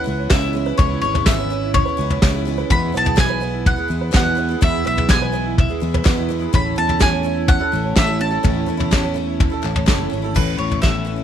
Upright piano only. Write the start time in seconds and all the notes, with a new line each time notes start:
Already playing: E4 B4
0.18 C#5
0.30 C#4
0.42 E4
0.55 C#4
0.66 B4
0.78 C#4
0.91 E4
1.03 C#4
1.14 B4
1.26 C#4
1.38 C#5
1.50 C#4
1.62 E4
1.85 B4
2.10 C#5
2.23 C#4
2.34 E4
2.46 C#4
2.58 B4
2.70 B3
2.82 E4
2.94 B3
3.06 G#4
3.17 B3
3.30 B4
3.42 B3
3.54 E4
3.78 G#4
4.01 B4
4.13 B3
4.25 E4
4.38 B3
4.49 G#4
4.62 B3
4.74 E4
4.86 B3
4.98 G#4
5.10 B3
5.22 B4
5.33 B3
5.46 E4
5.70 G#4
5.94 B4
6.06 B3
6.18 E4
6.30 B3
6.42 G#4
6.54 C#4
6.66 E4
6.77 C#4
6.89 A4
7.01 C#4
7.12 C#5
7.25 C#4
7.37 E4
7.60 A4
7.84 C#5
7.96 C#4
8.07 E4
8.20 C#4
8.31 A4
8.43 C#4
8.56 E4
8.67 C#4
8.79 A4
8.91 C#4
9.03 C#5
9.16 C#4
9.27 E4
9.52 A4
9.76 C#5
9.88 C#4
10.00 E4
10.12 C#4
10.24 A4